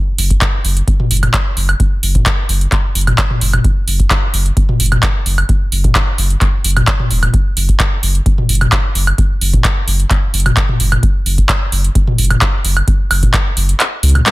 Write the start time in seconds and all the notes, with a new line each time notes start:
0.18 F#1, open hi-hat
0.30 kick, closed hi-hat
0.41 kick, clap, closed hi-hat
0.65 F#1, open hi-hat
0.77 closed hi-hat
0.88 kick, closed hi-hat
1.00 mid tom
1.11 F#1, open hi-hat
1.17 closed hi-hat
1.23 closed hi-hat, mid tom, high woodblock
1.34 kick, clap, closed hi-hat
1.57 F#1, open hi-hat
1.69 closed hi-hat, high woodblock
1.80 kick, closed hi-hat
2.03 F#1, open hi-hat
2.15 kick, closed hi-hat, mid tom
2.26 kick, clap, closed hi-hat
2.49 F#1, open hi-hat
2.61 closed hi-hat
2.72 kick, clap, closed hi-hat
2.95 F#1, open hi-hat
3.01 closed hi-hat
3.07 closed hi-hat, mid tom, high woodblock
3.18 kick, clap, closed hi-hat
3.30 mid tom
3.41 F#1, open hi-hat
3.53 closed hi-hat, mid tom, high woodblock
3.64 kick, closed hi-hat
3.88 F#1, open hi-hat
4.00 kick, closed hi-hat
4.11 kick, clap, closed hi-hat
4.34 F#1, open hi-hat
4.46 closed hi-hat
4.57 kick, closed hi-hat
4.69 mid tom
4.80 F#1, open hi-hat
4.86 closed hi-hat
4.92 closed hi-hat, mid tom, high woodblock
5.03 kick, clap, closed hi-hat
5.26 F#1, open hi-hat
5.38 closed hi-hat, high woodblock
5.49 kick, closed hi-hat
5.72 F#1, open hi-hat
5.84 kick, closed hi-hat, mid tom
5.95 kick, clap, closed hi-hat
6.18 F#1, open hi-hat
6.30 closed hi-hat
6.41 kick, clap, closed hi-hat
6.64 F#1, open hi-hat
6.71 closed hi-hat
6.77 closed hi-hat, mid tom, high woodblock
6.88 kick, clap, closed hi-hat
7.00 mid tom
7.11 E1, open hi-hat
7.23 closed hi-hat, mid tom, high woodblock
7.34 kick, closed hi-hat
7.57 F#1, open hi-hat
7.69 kick, closed hi-hat
7.80 kick, clap, closed hi-hat
8.03 F#1, open hi-hat
8.15 closed hi-hat
8.26 kick, closed hi-hat
8.38 mid tom
8.49 F#1, open hi-hat
8.55 closed hi-hat
8.61 closed hi-hat, mid tom, high woodblock
8.72 kick, clap, closed hi-hat
8.95 F#1, open hi-hat
9.07 closed hi-hat, high woodblock
9.18 kick, closed hi-hat
9.41 F#1, open hi-hat
9.53 kick, closed hi-hat, mid tom
9.64 kick, clap, closed hi-hat
9.88 F#1, open hi-hat
10.00 closed hi-hat
10.11 kick, clap, closed hi-hat
10.34 F#1, open hi-hat
10.40 closed hi-hat
10.46 closed hi-hat, mid tom, high woodblock
10.57 kick, clap, closed hi-hat
10.69 mid tom
10.80 F#1, open hi-hat
10.92 closed hi-hat, mid tom, high woodblock
11.03 kick, closed hi-hat
11.26 F#1, open hi-hat
11.38 kick, closed hi-hat
11.49 kick, clap, closed hi-hat
11.72 F#1, open hi-hat
11.84 closed hi-hat
11.95 kick, closed hi-hat
12.07 mid tom
12.18 F#1, open hi-hat
12.24 closed hi-hat
12.30 closed hi-hat, mid tom, high woodblock
12.41 kick, clap, closed hi-hat
12.65 F#1, open hi-hat
12.77 closed hi-hat, high woodblock
12.88 kick, closed hi-hat
13.11 F#1, open hi-hat, high woodblock
13.23 kick, closed hi-hat, mid tom
13.34 kick, clap, closed hi-hat
13.57 F#1, open hi-hat
13.69 closed hi-hat
13.80 clap, closed hi-hat
14.03 C#2, open hi-hat
14.09 closed hi-hat
14.15 closed hi-hat, mid tom, high woodblock
14.26 clap, closed hi-hat, high tom